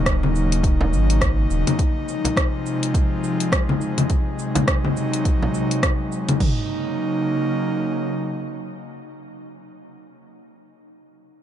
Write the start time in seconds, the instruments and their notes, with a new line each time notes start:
Already playing: sub bass D#1, analog synth pad C#3 F#3 A#3 D#4
0.06 kick, cross-stick, closed hi-hat, cabasa
0.23 low conga
0.36 cabasa
0.52 closed hi-hat, cabasa
0.64 kick, closed hi-hat, cabasa
0.81 frame drum
0.92 sub bass G#1, cabasa
1.10 closed hi-hat, cabasa
1.21 kick, cross-stick, closed hi-hat, cabasa
1.50 sub bass D#1, cabasa
1.67 closed hi-hat, low conga, cabasa
1.79 analog synth pad C3 F3 G#3, kick, closed hi-hat, cabasa
2.08 cabasa
2.25 closed hi-hat, frame drum, cabasa
2.37 kick, cross-stick, closed hi-hat, cabasa
2.66 cabasa
2.83 closed hi-hat, cabasa
2.94 kick, closed hi-hat, cabasa
3.24 cabasa
3.40 closed hi-hat, cabasa
3.52 kick, cross-stick, closed hi-hat, cabasa
3.69 low conga
3.81 cabasa
3.98 closed hi-hat, low conga, cabasa
4.10 analog synth pad C3 F#3 D#4, kick, closed hi-hat, cabasa
4.39 cabasa
4.55 closed hi-hat, frame drum, low conga, cabasa
4.67 kick, cross-stick, closed hi-hat, cabasa
4.84 low conga
4.97 cabasa
5.13 closed hi-hat, cabasa
5.25 kick, closed hi-hat, cabasa
5.42 frame drum
5.54 cabasa
5.71 closed hi-hat, cabasa
5.83 kick, cross-stick, closed hi-hat, cabasa
6.12 cabasa
6.29 closed hi-hat, low conga, cabasa
6.40 analog synth pad C#3 F#3 A#3 D#4, kick, floor tom, crash